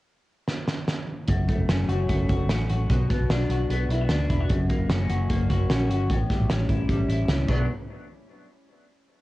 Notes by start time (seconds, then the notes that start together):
0.48 snare
0.68 snare
0.88 snare
1.28 F#1 F#2, kick, closed hi-hat
1.48 A3, kick, closed hi-hat
1.58 F#1
1.69 F#1 C#4, snare, closed hi-hat
1.88 F#1 F#4, closed hi-hat
2.08 F#1 A3, kick, closed hi-hat
2.29 F#1 F#4, kick, closed hi-hat
2.49 A1 C#4, snare, closed hi-hat
2.70 A1 F#4, closed hi-hat
2.90 B1 B2, kick, closed hi-hat
3.10 B3, kick, snare, closed hi-hat
3.21 B1
3.30 B1 D4, snare, closed hi-hat
3.49 B1 F#4, closed hi-hat
3.70 B1 B3, closed hi-hat
3.89 B1 E4, closed hi-hat
4.01 F#4
4.09 D2 D4, snare, closed hi-hat
4.30 E1 E4, kick, closed hi-hat
4.41 F#4
4.50 F#1 F#2, kick, closed hi-hat
4.70 A#3, kick, closed hi-hat
4.79 F#1
4.89 F#1 C#4, snare, closed hi-hat
5.10 F#1 F#4, closed hi-hat
5.30 F#1 A#3, kick, closed hi-hat
5.50 F#1 F#4, kick, closed hi-hat
5.70 A#1 C#4, snare, closed hi-hat
5.90 G1 F#4, closed hi-hat
6.09 A1 A2, kick, closed hi-hat
6.30 G3, kick, snare, closed hi-hat
6.40 A1
6.50 A1 C#4, snare, closed hi-hat
6.69 A1 E4, kick, closed hi-hat
6.89 A1 G3, kick, closed hi-hat
7.08 A1 E4, closed hi-hat
7.28 C#2 C#4, snare, closed hi-hat
7.48 B1 B2 F#3 B3 D4, kick, crash